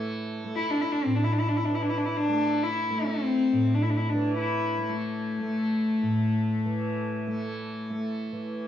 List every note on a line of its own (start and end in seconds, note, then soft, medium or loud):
0.00 1.05 A2 soft
0.00 1.68 E3 medium
0.00 0.44 A3 medium
0.44 2.28 A3 medium
0.56 0.72 E4 medium
0.71 0.82 D4 medium
0.81 0.94 E4 medium
0.92 1.05 D4 medium
1.04 3.52 A2 medium
1.04 1.17 C4 medium
1.15 1.25 D4 medium
1.24 1.34 E4 medium
1.32 1.42 D4 medium
1.40 1.50 E4 medium
1.49 1.58 D4 medium
1.57 1.66 E4 medium
1.65 4.14 E3 medium
1.65 1.77 D4 medium
1.75 1.84 E4 medium
1.82 1.91 D4 medium
1.89 1.99 E4 medium
1.98 2.07 D4 medium
2.06 2.19 E4 medium
2.17 2.65 D4 medium
2.28 2.90 A3 medium
2.63 3.09 E4 medium
2.90 4.78 A3 medium
3.08 3.76 C4 medium
3.53 6.02 A2 medium
3.75 3.84 D4 medium
3.83 3.92 E4 medium
3.90 3.98 D4 medium
3.97 4.11 E4 medium
4.10 4.37 D4 medium
4.15 6.65 E3 medium
4.38 4.90 E4 medium
4.78 5.40 A3 medium
4.89 7.97 A3 medium
5.40 7.27 A3 medium
6.02 8.68 A2 soft
6.65 8.32 E3 medium
7.27 7.90 A3 medium
7.90 8.68 A3 soft
8.32 8.68 E3 medium